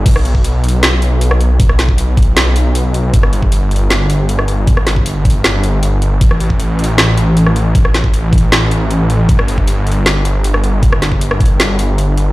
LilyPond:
<<
  \new Staff \with { instrumentName = "Detuned saw bass" } { \clef bass \time 4/4 \key g \major \tempo 4 = 156 b,,1~ | b,,1 | g,,1~ | g,,1 |
a,,1~ | a,,1 | g,,1~ | g,,1 | }
  \new DrumStaff \with { instrumentName = "Drums" } \drummode { \time 4/4 <cymc hh bd>16 ss16 hh16 bd16 hh8 hh32 hh16. <hh sn>8 hh8 hh16 ss16 hh8 | <hh bd>16 ss16 <hh sn>16 bd16 hh8 <hh bd>32 hh16. <hh sn>8 hh8 hh8 hh8 | <hh bd>16 ss16 hh16 bd16 hh8 hh32 hh16. <hh sn>8 hh8 hh16 ss16 hh8 | <hh bd>16 ss16 <hh sn>16 bd16 hh8 <hh bd>32 hh16. <hh sn>8 hh8 hh8 hh8 |
<hh bd>16 ss16 hh16 bd16 hh8 hh32 hh16. <hh sn>8 hh8 hh16 ss16 hh8 | <hh bd>16 ss16 <hh sn>16 bd16 hh8 <hh bd>32 hh16. <hh sn>8 hh8 hh8 hh8 | <hh bd>16 ss16 hh16 bd16 hh8 hh32 hh16. <hh sn>8 hh8 hh16 ss16 hh8 | <hh bd>16 ss16 <hh sn>16 bd16 hh16 ss16 <hh bd>32 hh16. <hh sn>8 hh8 hh8 hh8 | }
>>